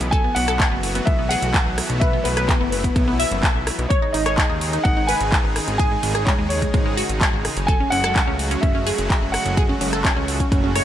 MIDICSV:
0, 0, Header, 1, 6, 480
1, 0, Start_track
1, 0, Tempo, 472441
1, 127, Time_signature, 4, 2, 24, 8
1, 11015, End_track
2, 0, Start_track
2, 0, Title_t, "Grand piano"
2, 0, Program_c, 0, 0
2, 113, Note_on_c, 0, 80, 118
2, 343, Note_off_c, 0, 80, 0
2, 352, Note_on_c, 0, 78, 110
2, 1072, Note_on_c, 0, 76, 107
2, 1101, Note_off_c, 0, 78, 0
2, 1311, Note_on_c, 0, 78, 109
2, 1327, Note_off_c, 0, 76, 0
2, 1998, Note_off_c, 0, 78, 0
2, 2030, Note_on_c, 0, 76, 102
2, 2273, Note_on_c, 0, 71, 103
2, 2286, Note_off_c, 0, 76, 0
2, 2735, Note_off_c, 0, 71, 0
2, 2751, Note_on_c, 0, 71, 85
2, 3678, Note_off_c, 0, 71, 0
2, 3950, Note_on_c, 0, 73, 95
2, 4191, Note_on_c, 0, 75, 96
2, 4206, Note_off_c, 0, 73, 0
2, 4878, Note_off_c, 0, 75, 0
2, 4913, Note_on_c, 0, 78, 110
2, 5153, Note_on_c, 0, 80, 107
2, 5167, Note_off_c, 0, 78, 0
2, 5839, Note_off_c, 0, 80, 0
2, 5874, Note_on_c, 0, 80, 111
2, 6353, Note_on_c, 0, 73, 97
2, 6375, Note_off_c, 0, 80, 0
2, 6408, Note_off_c, 0, 73, 0
2, 6593, Note_on_c, 0, 73, 93
2, 7046, Note_off_c, 0, 73, 0
2, 7791, Note_on_c, 0, 80, 116
2, 8030, Note_on_c, 0, 78, 122
2, 8046, Note_off_c, 0, 80, 0
2, 8718, Note_off_c, 0, 78, 0
2, 8748, Note_on_c, 0, 76, 101
2, 9437, Note_off_c, 0, 76, 0
2, 9470, Note_on_c, 0, 78, 99
2, 11015, Note_off_c, 0, 78, 0
2, 11015, End_track
3, 0, Start_track
3, 0, Title_t, "Synth pluck"
3, 0, Program_c, 1, 84
3, 126, Note_on_c, 1, 69, 105
3, 217, Note_off_c, 1, 69, 0
3, 247, Note_on_c, 1, 59, 65
3, 336, Note_off_c, 1, 59, 0
3, 368, Note_on_c, 1, 59, 69
3, 457, Note_off_c, 1, 59, 0
3, 488, Note_on_c, 1, 69, 94
3, 577, Note_off_c, 1, 69, 0
3, 607, Note_on_c, 1, 59, 63
3, 697, Note_off_c, 1, 59, 0
3, 728, Note_on_c, 1, 59, 68
3, 817, Note_off_c, 1, 59, 0
3, 968, Note_on_c, 1, 59, 66
3, 1057, Note_off_c, 1, 59, 0
3, 1087, Note_on_c, 1, 59, 66
3, 1177, Note_off_c, 1, 59, 0
3, 1208, Note_on_c, 1, 59, 65
3, 1297, Note_off_c, 1, 59, 0
3, 1327, Note_on_c, 1, 68, 95
3, 1951, Note_off_c, 1, 68, 0
3, 2047, Note_on_c, 1, 71, 103
3, 2137, Note_off_c, 1, 71, 0
3, 2167, Note_on_c, 1, 59, 68
3, 2257, Note_off_c, 1, 59, 0
3, 2287, Note_on_c, 1, 59, 66
3, 2377, Note_off_c, 1, 59, 0
3, 2407, Note_on_c, 1, 71, 93
3, 2496, Note_off_c, 1, 71, 0
3, 2527, Note_on_c, 1, 59, 66
3, 2617, Note_off_c, 1, 59, 0
3, 2648, Note_on_c, 1, 59, 69
3, 2737, Note_off_c, 1, 59, 0
3, 2887, Note_on_c, 1, 59, 61
3, 2976, Note_off_c, 1, 59, 0
3, 3006, Note_on_c, 1, 59, 68
3, 3096, Note_off_c, 1, 59, 0
3, 3126, Note_on_c, 1, 59, 62
3, 3216, Note_off_c, 1, 59, 0
3, 3246, Note_on_c, 1, 76, 92
3, 3871, Note_off_c, 1, 76, 0
3, 3967, Note_on_c, 1, 73, 106
3, 4057, Note_off_c, 1, 73, 0
3, 4087, Note_on_c, 1, 63, 66
3, 4177, Note_off_c, 1, 63, 0
3, 4207, Note_on_c, 1, 63, 64
3, 4297, Note_off_c, 1, 63, 0
3, 4327, Note_on_c, 1, 73, 98
3, 4416, Note_off_c, 1, 73, 0
3, 4447, Note_on_c, 1, 63, 63
3, 4537, Note_off_c, 1, 63, 0
3, 4568, Note_on_c, 1, 63, 66
3, 4657, Note_off_c, 1, 63, 0
3, 4808, Note_on_c, 1, 63, 66
3, 4897, Note_off_c, 1, 63, 0
3, 4928, Note_on_c, 1, 63, 67
3, 5017, Note_off_c, 1, 63, 0
3, 5048, Note_on_c, 1, 63, 64
3, 5137, Note_off_c, 1, 63, 0
3, 5168, Note_on_c, 1, 71, 99
3, 5792, Note_off_c, 1, 71, 0
3, 5888, Note_on_c, 1, 68, 110
3, 5977, Note_off_c, 1, 68, 0
3, 6008, Note_on_c, 1, 56, 61
3, 6097, Note_off_c, 1, 56, 0
3, 6128, Note_on_c, 1, 56, 68
3, 6217, Note_off_c, 1, 56, 0
3, 6247, Note_on_c, 1, 68, 90
3, 6337, Note_off_c, 1, 68, 0
3, 6368, Note_on_c, 1, 56, 61
3, 6457, Note_off_c, 1, 56, 0
3, 6487, Note_on_c, 1, 56, 67
3, 6576, Note_off_c, 1, 56, 0
3, 6727, Note_on_c, 1, 56, 68
3, 6817, Note_off_c, 1, 56, 0
3, 6846, Note_on_c, 1, 56, 67
3, 6937, Note_off_c, 1, 56, 0
3, 6966, Note_on_c, 1, 56, 63
3, 7056, Note_off_c, 1, 56, 0
3, 7085, Note_on_c, 1, 66, 95
3, 7711, Note_off_c, 1, 66, 0
3, 7806, Note_on_c, 1, 69, 103
3, 7897, Note_off_c, 1, 69, 0
3, 7927, Note_on_c, 1, 61, 61
3, 8016, Note_off_c, 1, 61, 0
3, 8047, Note_on_c, 1, 61, 68
3, 8137, Note_off_c, 1, 61, 0
3, 8167, Note_on_c, 1, 69, 98
3, 8256, Note_off_c, 1, 69, 0
3, 8286, Note_on_c, 1, 61, 66
3, 8377, Note_off_c, 1, 61, 0
3, 8407, Note_on_c, 1, 61, 67
3, 8497, Note_off_c, 1, 61, 0
3, 8647, Note_on_c, 1, 61, 67
3, 8736, Note_off_c, 1, 61, 0
3, 8766, Note_on_c, 1, 61, 66
3, 8857, Note_off_c, 1, 61, 0
3, 8887, Note_on_c, 1, 61, 67
3, 8977, Note_off_c, 1, 61, 0
3, 9007, Note_on_c, 1, 68, 91
3, 9631, Note_off_c, 1, 68, 0
3, 9727, Note_on_c, 1, 68, 108
3, 9817, Note_off_c, 1, 68, 0
3, 9848, Note_on_c, 1, 61, 66
3, 9937, Note_off_c, 1, 61, 0
3, 9966, Note_on_c, 1, 61, 68
3, 10057, Note_off_c, 1, 61, 0
3, 10088, Note_on_c, 1, 69, 94
3, 10177, Note_off_c, 1, 69, 0
3, 10208, Note_on_c, 1, 61, 64
3, 10297, Note_off_c, 1, 61, 0
3, 10328, Note_on_c, 1, 61, 67
3, 10417, Note_off_c, 1, 61, 0
3, 10568, Note_on_c, 1, 61, 67
3, 10657, Note_off_c, 1, 61, 0
3, 10688, Note_on_c, 1, 61, 66
3, 10777, Note_off_c, 1, 61, 0
3, 10808, Note_on_c, 1, 61, 64
3, 10897, Note_off_c, 1, 61, 0
3, 10928, Note_on_c, 1, 73, 96
3, 11015, Note_off_c, 1, 73, 0
3, 11015, End_track
4, 0, Start_track
4, 0, Title_t, "Supersaw synth"
4, 0, Program_c, 2, 81
4, 0, Note_on_c, 2, 52, 75
4, 0, Note_on_c, 2, 59, 72
4, 126, Note_on_c, 2, 54, 78
4, 126, Note_on_c, 2, 66, 87
4, 127, Note_on_c, 2, 57, 74
4, 2027, Note_off_c, 2, 66, 0
4, 2048, Note_on_c, 2, 64, 86
4, 3926, Note_off_c, 2, 52, 0
4, 3926, Note_off_c, 2, 59, 0
4, 3928, Note_off_c, 2, 54, 0
4, 3928, Note_off_c, 2, 57, 0
4, 3948, Note_off_c, 2, 64, 0
4, 3965, Note_on_c, 2, 56, 72
4, 3965, Note_on_c, 2, 68, 90
4, 3966, Note_on_c, 2, 49, 80
4, 3966, Note_on_c, 2, 51, 74
4, 3966, Note_on_c, 2, 63, 74
4, 7768, Note_off_c, 2, 51, 0
4, 7768, Note_off_c, 2, 63, 0
4, 7768, Note_off_c, 2, 68, 0
4, 7806, Note_on_c, 2, 54, 75
4, 7806, Note_on_c, 2, 57, 73
4, 7806, Note_on_c, 2, 66, 91
4, 11015, Note_off_c, 2, 49, 0
4, 11015, Note_off_c, 2, 54, 0
4, 11015, Note_off_c, 2, 56, 0
4, 11015, Note_off_c, 2, 57, 0
4, 11015, Note_off_c, 2, 66, 0
4, 11015, End_track
5, 0, Start_track
5, 0, Title_t, "Analog synth bass"
5, 0, Program_c, 3, 38
5, 6, Note_on_c, 3, 35, 88
5, 304, Note_off_c, 3, 35, 0
5, 366, Note_on_c, 3, 35, 98
5, 664, Note_off_c, 3, 35, 0
5, 726, Note_on_c, 3, 30, 92
5, 1024, Note_off_c, 3, 30, 0
5, 1086, Note_on_c, 3, 35, 87
5, 1385, Note_off_c, 3, 35, 0
5, 1446, Note_on_c, 3, 35, 85
5, 1608, Note_off_c, 3, 35, 0
5, 1686, Note_on_c, 3, 35, 88
5, 1849, Note_off_c, 3, 35, 0
5, 1927, Note_on_c, 3, 35, 88
5, 2225, Note_off_c, 3, 35, 0
5, 2286, Note_on_c, 3, 35, 96
5, 2585, Note_off_c, 3, 35, 0
5, 2647, Note_on_c, 3, 30, 92
5, 2945, Note_off_c, 3, 30, 0
5, 3006, Note_on_c, 3, 35, 86
5, 3305, Note_off_c, 3, 35, 0
5, 3367, Note_on_c, 3, 30, 96
5, 3529, Note_off_c, 3, 30, 0
5, 3607, Note_on_c, 3, 35, 99
5, 3769, Note_off_c, 3, 35, 0
5, 3848, Note_on_c, 3, 35, 102
5, 3928, Note_off_c, 3, 35, 0
5, 4207, Note_on_c, 3, 32, 96
5, 4505, Note_off_c, 3, 32, 0
5, 4568, Note_on_c, 3, 39, 93
5, 4865, Note_off_c, 3, 39, 0
5, 4927, Note_on_c, 3, 32, 85
5, 5225, Note_off_c, 3, 32, 0
5, 5288, Note_on_c, 3, 32, 82
5, 5450, Note_off_c, 3, 32, 0
5, 5527, Note_on_c, 3, 32, 95
5, 5689, Note_off_c, 3, 32, 0
5, 5767, Note_on_c, 3, 32, 89
5, 6065, Note_off_c, 3, 32, 0
5, 6127, Note_on_c, 3, 32, 98
5, 6425, Note_off_c, 3, 32, 0
5, 6487, Note_on_c, 3, 39, 93
5, 6785, Note_off_c, 3, 39, 0
5, 6847, Note_on_c, 3, 32, 81
5, 7145, Note_off_c, 3, 32, 0
5, 7208, Note_on_c, 3, 32, 80
5, 7369, Note_off_c, 3, 32, 0
5, 7447, Note_on_c, 3, 32, 92
5, 7609, Note_off_c, 3, 32, 0
5, 7687, Note_on_c, 3, 30, 90
5, 7985, Note_off_c, 3, 30, 0
5, 8047, Note_on_c, 3, 30, 99
5, 8345, Note_off_c, 3, 30, 0
5, 8407, Note_on_c, 3, 37, 93
5, 8705, Note_off_c, 3, 37, 0
5, 8767, Note_on_c, 3, 30, 85
5, 9065, Note_off_c, 3, 30, 0
5, 9127, Note_on_c, 3, 30, 84
5, 9289, Note_off_c, 3, 30, 0
5, 9367, Note_on_c, 3, 30, 90
5, 9529, Note_off_c, 3, 30, 0
5, 9607, Note_on_c, 3, 30, 90
5, 9905, Note_off_c, 3, 30, 0
5, 9965, Note_on_c, 3, 30, 95
5, 10264, Note_off_c, 3, 30, 0
5, 10327, Note_on_c, 3, 37, 91
5, 10625, Note_off_c, 3, 37, 0
5, 10686, Note_on_c, 3, 30, 83
5, 10984, Note_off_c, 3, 30, 0
5, 11015, End_track
6, 0, Start_track
6, 0, Title_t, "Drums"
6, 8, Note_on_c, 9, 42, 66
6, 109, Note_off_c, 9, 42, 0
6, 126, Note_on_c, 9, 36, 127
6, 127, Note_on_c, 9, 42, 53
6, 228, Note_off_c, 9, 36, 0
6, 228, Note_off_c, 9, 42, 0
6, 366, Note_on_c, 9, 46, 113
6, 468, Note_off_c, 9, 46, 0
6, 487, Note_on_c, 9, 37, 76
6, 487, Note_on_c, 9, 42, 61
6, 589, Note_off_c, 9, 37, 0
6, 589, Note_off_c, 9, 42, 0
6, 606, Note_on_c, 9, 36, 124
6, 607, Note_on_c, 9, 42, 53
6, 608, Note_on_c, 9, 39, 124
6, 708, Note_off_c, 9, 36, 0
6, 708, Note_off_c, 9, 42, 0
6, 709, Note_off_c, 9, 39, 0
6, 847, Note_on_c, 9, 46, 114
6, 948, Note_off_c, 9, 46, 0
6, 968, Note_on_c, 9, 42, 64
6, 1070, Note_off_c, 9, 42, 0
6, 1086, Note_on_c, 9, 36, 127
6, 1087, Note_on_c, 9, 42, 53
6, 1188, Note_off_c, 9, 36, 0
6, 1189, Note_off_c, 9, 42, 0
6, 1327, Note_on_c, 9, 46, 113
6, 1428, Note_off_c, 9, 46, 0
6, 1447, Note_on_c, 9, 42, 67
6, 1549, Note_off_c, 9, 42, 0
6, 1566, Note_on_c, 9, 36, 123
6, 1567, Note_on_c, 9, 42, 53
6, 1568, Note_on_c, 9, 39, 121
6, 1668, Note_off_c, 9, 36, 0
6, 1668, Note_off_c, 9, 42, 0
6, 1669, Note_off_c, 9, 39, 0
6, 1807, Note_on_c, 9, 37, 63
6, 1807, Note_on_c, 9, 46, 119
6, 1908, Note_off_c, 9, 37, 0
6, 1908, Note_off_c, 9, 46, 0
6, 1927, Note_on_c, 9, 42, 61
6, 2029, Note_off_c, 9, 42, 0
6, 2046, Note_on_c, 9, 36, 127
6, 2047, Note_on_c, 9, 42, 48
6, 2148, Note_off_c, 9, 36, 0
6, 2148, Note_off_c, 9, 42, 0
6, 2287, Note_on_c, 9, 46, 111
6, 2389, Note_off_c, 9, 46, 0
6, 2408, Note_on_c, 9, 37, 79
6, 2408, Note_on_c, 9, 42, 64
6, 2509, Note_off_c, 9, 37, 0
6, 2509, Note_off_c, 9, 42, 0
6, 2526, Note_on_c, 9, 36, 127
6, 2527, Note_on_c, 9, 42, 53
6, 2528, Note_on_c, 9, 39, 121
6, 2628, Note_off_c, 9, 36, 0
6, 2629, Note_off_c, 9, 42, 0
6, 2630, Note_off_c, 9, 39, 0
6, 2767, Note_on_c, 9, 46, 113
6, 2869, Note_off_c, 9, 46, 0
6, 2887, Note_on_c, 9, 36, 66
6, 2889, Note_on_c, 9, 42, 67
6, 2988, Note_off_c, 9, 36, 0
6, 2990, Note_off_c, 9, 42, 0
6, 3006, Note_on_c, 9, 36, 127
6, 3007, Note_on_c, 9, 42, 52
6, 3108, Note_off_c, 9, 36, 0
6, 3109, Note_off_c, 9, 42, 0
6, 3248, Note_on_c, 9, 46, 115
6, 3349, Note_off_c, 9, 46, 0
6, 3368, Note_on_c, 9, 42, 63
6, 3470, Note_off_c, 9, 42, 0
6, 3487, Note_on_c, 9, 36, 118
6, 3488, Note_on_c, 9, 42, 49
6, 3489, Note_on_c, 9, 39, 115
6, 3588, Note_off_c, 9, 36, 0
6, 3590, Note_off_c, 9, 42, 0
6, 3591, Note_off_c, 9, 39, 0
6, 3728, Note_on_c, 9, 37, 66
6, 3728, Note_on_c, 9, 46, 119
6, 3830, Note_off_c, 9, 37, 0
6, 3830, Note_off_c, 9, 46, 0
6, 3849, Note_on_c, 9, 42, 59
6, 3951, Note_off_c, 9, 42, 0
6, 3967, Note_on_c, 9, 36, 121
6, 3968, Note_on_c, 9, 42, 51
6, 4068, Note_off_c, 9, 36, 0
6, 4070, Note_off_c, 9, 42, 0
6, 4208, Note_on_c, 9, 46, 105
6, 4309, Note_off_c, 9, 46, 0
6, 4328, Note_on_c, 9, 37, 83
6, 4328, Note_on_c, 9, 42, 66
6, 4430, Note_off_c, 9, 37, 0
6, 4430, Note_off_c, 9, 42, 0
6, 4447, Note_on_c, 9, 36, 125
6, 4448, Note_on_c, 9, 42, 53
6, 4449, Note_on_c, 9, 39, 123
6, 4549, Note_off_c, 9, 36, 0
6, 4550, Note_off_c, 9, 42, 0
6, 4551, Note_off_c, 9, 39, 0
6, 4687, Note_on_c, 9, 46, 109
6, 4789, Note_off_c, 9, 46, 0
6, 4808, Note_on_c, 9, 42, 66
6, 4910, Note_off_c, 9, 42, 0
6, 4927, Note_on_c, 9, 36, 121
6, 4927, Note_on_c, 9, 42, 50
6, 5029, Note_off_c, 9, 36, 0
6, 5029, Note_off_c, 9, 42, 0
6, 5167, Note_on_c, 9, 46, 110
6, 5269, Note_off_c, 9, 46, 0
6, 5288, Note_on_c, 9, 42, 65
6, 5390, Note_off_c, 9, 42, 0
6, 5407, Note_on_c, 9, 36, 118
6, 5408, Note_on_c, 9, 42, 48
6, 5409, Note_on_c, 9, 39, 111
6, 5509, Note_off_c, 9, 36, 0
6, 5510, Note_off_c, 9, 42, 0
6, 5511, Note_off_c, 9, 39, 0
6, 5648, Note_on_c, 9, 37, 66
6, 5648, Note_on_c, 9, 46, 106
6, 5749, Note_off_c, 9, 37, 0
6, 5749, Note_off_c, 9, 46, 0
6, 5768, Note_on_c, 9, 42, 61
6, 5870, Note_off_c, 9, 42, 0
6, 5887, Note_on_c, 9, 36, 117
6, 5887, Note_on_c, 9, 42, 53
6, 5989, Note_off_c, 9, 36, 0
6, 5989, Note_off_c, 9, 42, 0
6, 6127, Note_on_c, 9, 46, 99
6, 6229, Note_off_c, 9, 46, 0
6, 6247, Note_on_c, 9, 37, 82
6, 6247, Note_on_c, 9, 42, 67
6, 6349, Note_off_c, 9, 37, 0
6, 6349, Note_off_c, 9, 42, 0
6, 6367, Note_on_c, 9, 36, 122
6, 6367, Note_on_c, 9, 42, 53
6, 6368, Note_on_c, 9, 39, 120
6, 6468, Note_off_c, 9, 42, 0
6, 6469, Note_off_c, 9, 36, 0
6, 6469, Note_off_c, 9, 39, 0
6, 6607, Note_on_c, 9, 46, 106
6, 6709, Note_off_c, 9, 46, 0
6, 6728, Note_on_c, 9, 36, 58
6, 6729, Note_on_c, 9, 42, 69
6, 6829, Note_off_c, 9, 36, 0
6, 6830, Note_off_c, 9, 42, 0
6, 6847, Note_on_c, 9, 36, 117
6, 6848, Note_on_c, 9, 42, 54
6, 6949, Note_off_c, 9, 36, 0
6, 6949, Note_off_c, 9, 42, 0
6, 7088, Note_on_c, 9, 46, 112
6, 7189, Note_off_c, 9, 46, 0
6, 7208, Note_on_c, 9, 42, 69
6, 7310, Note_off_c, 9, 42, 0
6, 7327, Note_on_c, 9, 36, 110
6, 7328, Note_on_c, 9, 42, 54
6, 7329, Note_on_c, 9, 39, 117
6, 7429, Note_off_c, 9, 36, 0
6, 7429, Note_off_c, 9, 42, 0
6, 7430, Note_off_c, 9, 39, 0
6, 7568, Note_on_c, 9, 37, 67
6, 7568, Note_on_c, 9, 46, 109
6, 7669, Note_off_c, 9, 37, 0
6, 7669, Note_off_c, 9, 46, 0
6, 7688, Note_on_c, 9, 42, 66
6, 7789, Note_off_c, 9, 42, 0
6, 7807, Note_on_c, 9, 36, 123
6, 7807, Note_on_c, 9, 42, 56
6, 7908, Note_off_c, 9, 36, 0
6, 7909, Note_off_c, 9, 42, 0
6, 8047, Note_on_c, 9, 46, 105
6, 8149, Note_off_c, 9, 46, 0
6, 8169, Note_on_c, 9, 37, 82
6, 8169, Note_on_c, 9, 42, 72
6, 8270, Note_off_c, 9, 37, 0
6, 8270, Note_off_c, 9, 42, 0
6, 8286, Note_on_c, 9, 36, 113
6, 8288, Note_on_c, 9, 42, 59
6, 8289, Note_on_c, 9, 39, 119
6, 8388, Note_off_c, 9, 36, 0
6, 8390, Note_off_c, 9, 42, 0
6, 8391, Note_off_c, 9, 39, 0
6, 8527, Note_on_c, 9, 46, 101
6, 8629, Note_off_c, 9, 46, 0
6, 8648, Note_on_c, 9, 42, 70
6, 8749, Note_off_c, 9, 42, 0
6, 8767, Note_on_c, 9, 36, 120
6, 8767, Note_on_c, 9, 42, 56
6, 8868, Note_off_c, 9, 36, 0
6, 8869, Note_off_c, 9, 42, 0
6, 9008, Note_on_c, 9, 46, 103
6, 9109, Note_off_c, 9, 46, 0
6, 9128, Note_on_c, 9, 42, 71
6, 9230, Note_off_c, 9, 42, 0
6, 9246, Note_on_c, 9, 36, 117
6, 9248, Note_on_c, 9, 42, 52
6, 9249, Note_on_c, 9, 39, 112
6, 9348, Note_off_c, 9, 36, 0
6, 9349, Note_off_c, 9, 42, 0
6, 9350, Note_off_c, 9, 39, 0
6, 9488, Note_on_c, 9, 37, 65
6, 9488, Note_on_c, 9, 46, 105
6, 9590, Note_off_c, 9, 37, 0
6, 9590, Note_off_c, 9, 46, 0
6, 9607, Note_on_c, 9, 42, 64
6, 9709, Note_off_c, 9, 42, 0
6, 9726, Note_on_c, 9, 36, 121
6, 9727, Note_on_c, 9, 42, 55
6, 9828, Note_off_c, 9, 36, 0
6, 9829, Note_off_c, 9, 42, 0
6, 9967, Note_on_c, 9, 46, 106
6, 10069, Note_off_c, 9, 46, 0
6, 10088, Note_on_c, 9, 37, 80
6, 10088, Note_on_c, 9, 42, 67
6, 10189, Note_off_c, 9, 37, 0
6, 10189, Note_off_c, 9, 42, 0
6, 10206, Note_on_c, 9, 36, 115
6, 10207, Note_on_c, 9, 42, 59
6, 10208, Note_on_c, 9, 39, 127
6, 10308, Note_off_c, 9, 36, 0
6, 10308, Note_off_c, 9, 42, 0
6, 10309, Note_off_c, 9, 39, 0
6, 10447, Note_on_c, 9, 46, 101
6, 10549, Note_off_c, 9, 46, 0
6, 10567, Note_on_c, 9, 36, 63
6, 10569, Note_on_c, 9, 42, 74
6, 10668, Note_off_c, 9, 36, 0
6, 10670, Note_off_c, 9, 42, 0
6, 10686, Note_on_c, 9, 36, 118
6, 10687, Note_on_c, 9, 42, 56
6, 10788, Note_off_c, 9, 36, 0
6, 10789, Note_off_c, 9, 42, 0
6, 10927, Note_on_c, 9, 37, 61
6, 10927, Note_on_c, 9, 46, 106
6, 11015, Note_off_c, 9, 37, 0
6, 11015, Note_off_c, 9, 46, 0
6, 11015, End_track
0, 0, End_of_file